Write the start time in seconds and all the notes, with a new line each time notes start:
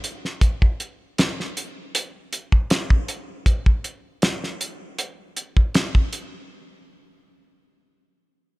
0.04 closed hi-hat
0.25 snare
0.41 kick, closed hi-hat
0.62 kick
0.80 closed hi-hat
1.18 snare, closed hi-hat
1.40 snare
1.57 closed hi-hat
1.95 closed hi-hat
2.33 closed hi-hat
2.52 kick
2.70 snare, closed hi-hat
2.90 kick
3.08 closed hi-hat
3.46 kick, closed hi-hat
3.66 kick
3.84 closed hi-hat
4.22 snare, closed hi-hat
4.44 snare
4.61 closed hi-hat
4.99 closed hi-hat
5.37 closed hi-hat
5.57 kick
5.75 snare, closed hi-hat
5.95 kick
6.13 closed hi-hat